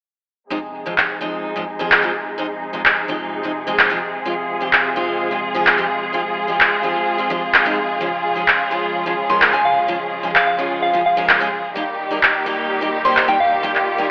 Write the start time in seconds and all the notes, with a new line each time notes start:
0.50 G#2 C3 F3 G#3 C4 D#4 G#4
0.86 G#2 F3 G#3 C4 F4
0.98 clap
1.21 G#2 F3 G#3 C4 D#4
1.56 G#2 F3 G#3 C4 D#4
1.79 G#2 F3 G#3 C4 G#4
1.92 clap
2.03 G#2 F3 G#3 C4 F4
2.38 G#2 F3 G#3 C4 D#4
2.73 G#2 F3 G#3 C4 F4
2.85 clap
3.08 G#2 F3 G#3 C4 D#4
3.43 G#2 F3 G#3 C4 D#4
3.67 G#2 F3 G#3 C4 G#4
3.79 clap
3.90 G#2 F3 G#3 C4 F4
4.25 F3 G#3 C4 F4
4.61 F3 G#3 C4 G4
4.73 clap
4.96 F3 G#3 C4 F4
5.31 F3 G#3 C4 F4
5.54 F3 G#3 C4 G#4
5.67 clap
5.78 F3 G#3 C4 G4
6.13 F3 G#3 C4 F4
6.48 F3 G#3 C4 G4
6.60 clap
6.83 F3 G#3 C4 F4
7.18 F3 G#3 C4 F4
7.30 F3 G#3 C4 G4
7.54 clap
7.65 F3 G#3 C4 D#4
8.01 C#3 F3 G#3 C#4 F4
8.35 F3 G#3 C#4 G#4
8.48 clap
8.71 F3 G#3 C#4 F4
9.06 F3 G#3 C#4 F4
9.29 F3 G#3 C#4 A#4 C6
9.42 clap
9.53 F3 G#3 C#4 G#4 G#5
9.65 F5
9.88 F3 G#3 C#4 F4
10.23 F3 G#3 C#4 G#4
10.36 F5, clap
10.47 F5
10.58 F3 G#3 C#4 F4
10.82 F5
10.93 F3 G#3 C#4 F4
11.06 F5
11.17 F3 G#3 C#4 A#4
11.29 clap
11.40 F3 G#3 C#4 G#4
11.76 A#2 D#3 G3 A#3 D#4 G4
12.10 G3 A#3 D#4 A#4
12.23 clap
12.46 G3 A#3 D#4 G4
12.81 G3 A#3 D#4 G4
13.05 G3 A#3 D#4 C5 C6
13.17 clap
13.28 G3 A#3 D#4 A#4 G5
13.40 F5
13.63 G3 A#3 D#4 F4 G4
13.75 clap
13.98 G3 A#3 D#4 A#4